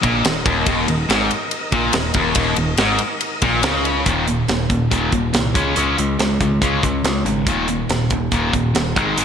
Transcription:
0.00 0.23 A#1 loud
0.00 0.23 A#2 loud
0.00 4.02 D#4 medium
0.00 4.02 A#4 medium
0.00 4.02 D#5 medium
0.00 kick loud
0.00 ride medium
0.24 0.44 D#1 medium
0.24 0.41 D#2 medium
0.24 snare loud
0.24 ride medium
0.46 0.65 D#1 medium
0.46 0.66 D#2 medium
0.46 kick loud
0.46 ride medium
0.66 0.86 D#1 medium
0.66 0.87 D#2 loud
0.66 kick loud
0.66 ride medium
0.88 1.08 D#1 medium
0.88 1.05 D#2 medium
0.88 ride medium
1.09 1.29 G#1 medium
1.09 1.30 G#2 medium
1.09 snare loud
1.09 ride medium
1.31 ride medium
1.51 ride medium
1.72 1.92 A#1 medium
1.72 1.94 A#2 loud
1.72 kick loud
1.72 ride medium
1.93 2.13 D#1 medium
1.93 2.11 D#2 medium
1.93 snare loud
1.93 ride loud
2.14 2.35 D#1 medium
2.14 2.35 D#2 medium
2.14 kick loud
2.14 ride medium
2.35 2.56 D#1 medium
2.35 2.57 D#2 loud
2.35 kick loud
2.35 ride loud
2.56 2.77 D#1 medium
2.56 2.75 D#2 medium
2.56 ride medium
2.77 2.98 G#1 medium
2.77 3.00 G#2 loud
2.77 snare medium
2.77 ride medium
2.99 ride medium
3.21 ride medium
3.42 3.62 A#1 medium
3.42 3.63 A#2 loud
3.42 kick loud
3.42 ride medium
3.63 4.03 C#2 medium
3.63 4.06 C#3 loud
3.63 snare loud
3.63 ride medium
3.85 ride medium
4.05 4.42 D#1 medium
4.05 4.26 D#2 medium
4.05 4.26 A#2 medium
4.05 4.26 D#3 medium
4.05 kick loud
4.05 closed hi-hat medium
4.28 4.47 D#2 medium
4.28 4.47 A#2 medium
4.28 closed hi-hat medium
4.48 4.66 D#1 medium
4.48 4.68 D#2 medium
4.48 4.68 A#2 medium
4.48 snare medium
4.48 closed hi-hat medium
4.70 4.88 D#1 medium
4.70 4.89 D#2 medium
4.70 4.89 A#2 medium
4.70 kick medium
4.70 closed hi-hat medium
4.91 5.09 D#1 medium
4.91 5.11 D#2 medium
4.91 5.11 A#2 medium
4.91 5.12 D#3 medium
4.91 kick medium
4.91 closed hi-hat medium
5.12 5.31 D#1 medium
5.12 5.32 D#2 medium
5.12 5.32 A#2 medium
5.12 kick medium
5.12 closed hi-hat medium
5.33 5.55 C2 medium
5.33 5.53 D#2 medium
5.33 5.53 A#2 medium
5.33 snare loud
5.33 closed hi-hat medium
5.54 5.73 C#2 medium
5.54 5.75 C#3 medium
5.54 5.75 G#3 medium
5.54 5.75 C#4 medium
5.54 kick loud
5.54 closed hi-hat medium
5.76 5.95 C#2 medium
5.76 5.96 C#3 medium
5.76 5.96 G#3 medium
5.76 5.97 C#4 loud
5.76 closed hi-hat medium
5.97 6.16 C#2 medium
5.97 6.17 C#3 medium
5.97 6.17 G#3 medium
5.97 closed hi-hat medium
6.19 6.37 C#2 medium
6.19 6.38 C#3 medium
6.19 6.38 G#3 medium
6.19 snare medium
6.19 closed hi-hat medium
6.41 6.59 C#2 medium
6.41 6.60 C#3 medium
6.41 6.60 G#3 medium
6.41 kick medium
6.41 closed hi-hat medium
6.61 6.80 C#2 medium
6.61 6.82 C#3 medium
6.61 6.82 G#3 medium
6.61 6.82 C#4 medium
6.61 kick medium
6.61 closed hi-hat medium
6.83 7.01 C#2 medium
6.83 7.03 C#3 medium
6.83 7.03 G#3 medium
6.83 kick medium
6.83 closed hi-hat medium
7.04 7.22 C#2 medium
7.04 7.24 C#3 medium
7.04 7.24 G#3 medium
7.04 snare loud
7.04 closed hi-hat medium
7.25 7.47 G#1 medium
7.25 7.45 C#3 medium
7.25 7.45 G#3 medium
7.25 closed hi-hat medium
7.47 7.83 D#1 medium
7.47 7.67 D#2 medium
7.47 7.68 A#2 medium
7.47 7.68 D#3 loud
7.47 kick loud
7.47 closed hi-hat medium
7.68 7.88 D#2 medium
7.68 7.88 A#2 medium
7.68 closed hi-hat medium
7.89 8.07 D#1 medium
7.89 8.09 D#2 medium
7.89 8.09 A#2 medium
7.89 snare medium
7.89 closed hi-hat medium
8.10 8.29 D#1 medium
8.10 8.30 D#2 medium
8.10 8.30 A#2 medium
8.10 kick medium
8.10 closed hi-hat medium
8.32 8.50 D#1 medium
8.32 8.52 D#2 medium
8.32 8.53 A#2 medium
8.32 8.53 D#3 medium
8.32 kick medium
8.32 closed hi-hat medium
8.53 8.71 D#1 medium
8.53 8.73 D#2 medium
8.53 8.73 A#2 medium
8.53 kick medium
8.53 closed hi-hat medium
8.75 8.97 D#1 medium
8.75 8.94 D#2 medium
8.75 8.94 A#2 medium
8.75 snare loud
8.75 closed hi-hat medium
8.96 9.14 G#1 medium
8.96 9.16 G#2 medium
8.96 9.17 D#3 medium
8.96 9.17 G#3 medium
8.96 kick medium
8.96 closed hi-hat medium
9.17 9.25 G#1 medium
9.17 9.25 G#2 medium
9.17 9.25 D#3 medium
9.17 9.25 G#3 medium
9.17 closed hi-hat medium

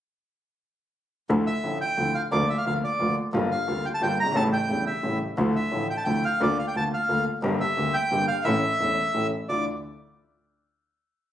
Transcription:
1.29 1.44 D2 loud
1.29 1.44 D2 medium
1.29 1.44 D3 medium
1.29 1.44 F3 medium
1.29 1.44 A3 medium
1.29 1.44 E4 medium
1.47 1.79 E5 medium
1.64 1.78 A1 medium
1.64 1.78 A2 medium
1.64 1.78 D3 soft
1.64 1.78 F3 soft
1.64 1.78 A3 soft
1.64 1.79 E4 medium
1.81 2.16 G5 loud
1.97 2.12 D2 medium
1.97 2.12 D3 medium
1.97 2.12 F3 soft
1.97 2.12 A3 soft
1.97 2.12 E4 medium
2.15 2.22 F5 medium
2.32 2.46 D2 medium
2.32 2.46 D2 loud
2.32 2.46 D3 medium
2.32 2.46 F3 medium
2.32 2.46 A#3 medium
2.32 2.46 F4 medium
2.32 2.49 D5 loud
2.50 2.57 E5 medium
2.58 2.65 F5 medium
2.66 2.80 D2 medium
2.66 2.80 D3 medium
2.66 2.80 F3 soft
2.66 2.80 A#3 soft
2.66 2.80 F4 medium
2.66 2.74 F5 loud
2.84 3.15 D5 medium
2.99 3.14 D2 medium
2.99 3.14 D3 medium
2.99 3.14 F3 soft
2.99 3.14 A#3 soft
2.99 3.14 F4 medium
3.33 3.48 G1 loud
3.33 3.48 G1 medium
3.33 3.48 G2 medium
3.33 3.48 D3 medium
3.33 3.48 G3 medium
3.33 3.48 A#3 medium
3.33 3.48 F4 medium
3.51 3.86 F5 medium
3.67 3.82 D2 medium
3.67 3.82 D3 medium
3.67 3.82 G3 medium
3.67 3.82 A#3 soft
3.67 3.82 F4 medium
3.86 3.89 G5 loud
3.94 4.02 A5 loud
4.01 4.16 G1 medium
4.01 4.16 G2 medium
4.01 4.16 D3 medium
4.01 4.16 G3 soft
4.01 4.16 A#3 soft
4.01 4.16 F4 medium
4.01 4.18 G5 loud
4.19 4.27 F#1 medium
4.19 4.35 G1 medium
4.19 4.35 A#5 loud
4.26 4.31 G1 medium
4.32 4.36 G#1 medium
4.32 4.50 A1 medium
4.32 4.50 A2 medium
4.32 4.50 C#3 medium
4.32 4.50 G3 medium
4.36 4.50 A1 loud
4.36 4.50 A3 medium
4.36 4.50 E4 medium
4.36 4.44 A5 loud
4.53 4.85 G5 loud
4.69 4.84 E1 medium
4.69 4.84 E2 medium
4.69 4.84 C#3 medium
4.69 4.84 G3 soft
4.69 4.84 A3 soft
4.69 4.84 E4 medium
4.87 5.19 E5 medium
5.03 5.18 A1 medium
5.03 5.18 A2 medium
5.03 5.18 C#3 soft
5.03 5.18 G3 soft
5.03 5.18 A3 soft
5.03 5.18 E4 medium
5.37 5.52 D2 loud
5.37 5.52 D2 medium
5.37 5.52 D3 medium
5.37 5.52 F3 medium
5.37 5.52 A3 medium
5.37 5.52 E4 medium
5.56 5.87 E5 medium
5.72 5.86 A1 medium
5.72 5.86 A2 medium
5.72 5.86 D3 medium
5.72 5.86 F3 soft
5.72 5.86 A3 soft
5.72 5.87 E4 medium
5.90 5.97 G5 medium
5.97 6.04 A5 medium
6.04 6.21 D2 medium
6.04 6.21 D3 medium
6.04 6.21 F3 soft
6.04 6.21 A3 soft
6.04 6.21 E4 medium
6.04 6.25 G5 loud
6.25 6.42 F5 loud
6.40 6.55 D2 loud
6.40 6.55 D2 medium
6.40 6.55 D3 medium
6.40 6.55 A3 medium
6.40 6.55 A#3 medium
6.40 6.55 F4 medium
6.40 6.58 D5 loud
6.59 6.66 F5 medium
6.68 6.76 G5 loud
6.75 6.89 D2 medium
6.75 6.90 D2 medium
6.75 6.90 D3 medium
6.75 6.90 A3 medium
6.75 6.90 A#3 soft
6.75 6.90 F4 medium
6.75 6.84 A5 loud
6.94 7.25 F5 medium
7.09 7.23 D2 medium
7.09 7.23 D3 medium
7.09 7.23 A3 soft
7.09 7.23 A#3 soft
7.09 7.24 F4 medium
7.43 7.57 G1 loud
7.43 7.58 G1 medium
7.43 7.58 G2 medium
7.43 7.57 D3 medium
7.43 7.58 G3 medium
7.43 7.58 A#3 medium
7.43 7.58 G4 medium
7.61 7.96 E5 loud
7.77 7.92 D2 medium
7.77 7.92 D3 medium
7.77 7.92 G3 medium
7.77 7.92 A#3 soft
7.77 7.92 G4 medium
7.94 8.26 G5 loud
8.11 8.26 G1 medium
8.11 8.26 G2 medium
8.11 8.26 D3 medium
8.11 8.26 G3 soft
8.11 8.26 A#3 soft
8.11 8.26 G4 medium
8.28 8.44 F5 loud
8.45 8.60 A1 loud
8.45 8.60 A1 medium
8.45 8.61 A2 medium
8.45 8.60 E3 medium
8.45 8.60 A3 medium
8.45 8.60 C#4 medium
8.45 8.60 A4 medium
8.45 9.27 E5 loud
8.80 8.95 E1 medium
8.80 8.95 E2 medium
8.80 8.95 E3 soft
8.80 8.95 A3 soft
8.80 8.95 C#4 soft
8.80 8.95 A4 medium
9.14 9.29 A1 medium
9.14 9.29 A2 medium
9.14 9.29 E3 soft
9.14 9.29 A3 soft
9.14 9.29 C#4 soft
9.14 9.29 A4 medium
9.49 9.63 D2 medium
9.49 9.64 D2 medium
9.49 9.64 D4 soft
9.49 9.64 E4 soft
9.49 9.64 F4 medium
9.49 9.65 D5 medium

